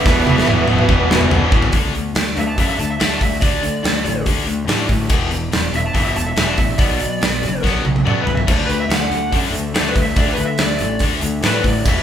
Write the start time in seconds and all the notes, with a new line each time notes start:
Already playing: B3 E5
0.05 E1 E2 B2 E3 B3 F#4, kick, snare
0.26 E1 E2 B2 E3, high tom
0.38 snare
0.47 E1 E2 B2 E3, mid tom
0.68 E1 E2 B2 E3, mid tom
0.79 mid tom
0.89 E1 E2 B2 E3, kick, mid tom
1.09 E1 E2 B2 E3, snare
1.21 mid tom
1.31 E1 E2 B2 E3, floor tom
1.52 A1 E2 B2 E3, kick
1.62 floor tom
1.72 D2 D3 A3 D4, kick, open hi-hat
1.94 D3 A3, open hi-hat
2.15 D2 D3 A3, snare, open hi-hat
2.36 D2 D3 A3 E5, open hi-hat
2.47 A5
2.58 F#2 D3 A3 D4 E5, kick, open hi-hat
2.70 E5
2.79 D2 D3 A3 A5, open hi-hat
2.90 E5
3.00 D2 D3 A3 D4 E5, snare, open hi-hat
3.10 A5
3.20 D2 D3 A3 E5, kick, open hi-hat
3.41 D2 D3 A3 D4 D5, kick, open hi-hat
3.63 D3 A3, open hi-hat
3.83 D2 D3 A3, snare, open hi-hat
4.04 A1 D3 A3, open hi-hat
4.26 D2 D3 A3 D4, kick, open hi-hat
4.46 D2 D3 A3, open hi-hat
4.67 A2 D3 A3 D4, snare, open hi-hat
4.88 A2 D3 A3, kick, open hi-hat
5.09 E1 E2 B2 E3, kick, crash
5.31 E2 B2, open hi-hat
5.51 E1 E2 B2, snare, open hi-hat
5.73 E1 E2 B2 E5, open hi-hat
5.86 A5
5.93 G1 E2 B2 E3 E5, kick, open hi-hat
6.06 E5
6.15 E1 E2 B2 A5, open hi-hat
6.27 E5
6.36 E1 E2 B2 E3 E5, snare, open hi-hat
6.48 A5
6.57 A1 E2 B2 E5, kick, open hi-hat
6.78 B1 B2 F#3 B3 D5, kick, open hi-hat
7.00 B2 F#3, open hi-hat
7.21 B1 B2 F#3, snare, open hi-hat
7.42 F#1 B2 F#3, snare, open hi-hat
7.63 B1 B2 F#3 B3, kick, snare
7.84 B1 B2 F#3, high tom
7.96 high tom
8.05 F#2 B2 F#3 B3 D5, mid tom
8.22 B4
8.26 F#2 B2 F#3, floor tom
8.35 E5, floor tom
8.47 D2 D3 A3 D4 A4 D5 E5, kick, crash
8.66 D3 A3 B4, open hi-hat
8.80 E5
8.89 D2 D3 A3, snare, open hi-hat
8.94 F#5
9.10 D2 D3 A3, open hi-hat
9.32 F#2 D3 A3 D4, kick, open hi-hat
9.52 D2 D3 A3, open hi-hat
9.74 D2 D3 A3 D4 D5, snare, open hi-hat
9.89 B4
9.95 D2 D3 A3, kick, open hi-hat
10.02 E5
10.16 D2 D3 A3 D4 D5, kick, open hi-hat
10.32 B4
10.37 D3 A3, open hi-hat
10.45 E5
10.58 D2 D3 A3, snare, open hi-hat
10.62 D5
10.79 A1 D3 A3, open hi-hat
10.99 D2 D3 A3 D4, kick, open hi-hat
11.21 D2 D3 A3, open hi-hat
11.43 A2 D3 A3 D4 B4, snare, open hi-hat
11.64 A2 D3 A3 D5, kick, open hi-hat
11.85 E1 E2 B2 E3 E4 B4 E5 F#5, kick, crash